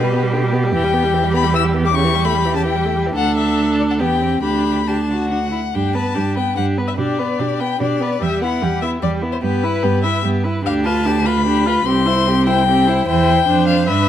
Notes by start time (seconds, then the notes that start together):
Already playing: B2 G4 B4
0.03 G3
0.14 B3
0.23 G3
0.33 D3
0.43 G3
0.53 B3
0.63 G3
0.73 E2 E3 G5
0.84 G3
0.94 B3
1.04 G3
1.14 E3
1.24 G3
1.34 B3 B5
1.44 G3
1.53 E3 E6
1.64 G3
1.74 B3
1.85 G3 D6
1.94 C#3 G4 C#6
2.04 E3
2.15 G3
2.25 A3 B5
2.35 G3
2.45 E3
2.55 C#3 A5
2.65 E3 G5
2.76 G3
2.85 A3
2.96 G3
3.06 E3
3.16 D2 D4 A4 F#5
3.37 E5
3.79 D5
3.90 F#5
4.00 E2 B3 G4 G5
4.21 C4
4.42 D2 D4 G4 B5
4.87 D4 G4 A5
5.11 F#4
5.30 D4 F#5
5.52 E4
5.74 G2 D4 G4 G5
5.95 B3 B4 A5
6.15 G2 D4 G4
6.35 B3 B4 G5
6.57 G2 D4 G4 F#5
6.78 B3 B4
6.88 E5
6.98 B2 D4 G4 D5
7.19 B3 B4
7.39 B2 D4 G4
7.60 B3 B4 G5
7.80 B2 D4 G4 D5
8.00 B3 B4
8.20 E2 G3 G4 E5
8.42 B3 E4 F#5
8.62 E2 G3 G4
8.82 B3 E4 E5
9.02 E2 G3 G4 D5
9.22 B3 E4
9.32 C5
9.42 G2 B3 G4 B4
9.63 E4 B4
9.83 G2 B3 G4
10.03 E4 B4 E5
10.24 G2 B3 G4
10.44 E4 B4
10.65 D2 D4 G4 F5
10.85 F4 B4 A5
11.06 D4 G4
11.26 F4 B4 B5
11.46 D4 G4
11.66 F4 B4
11.86 C2 C4 G4 C6
12.06 E4 C5
12.27 C4 G4
12.46 E4 C5 G5
12.67 C4 G4
12.87 E4 C5
13.06 E2 E4 C5 G5
13.47 F2 D4 C5
13.67 F5
13.88 G2 D4 B4 E5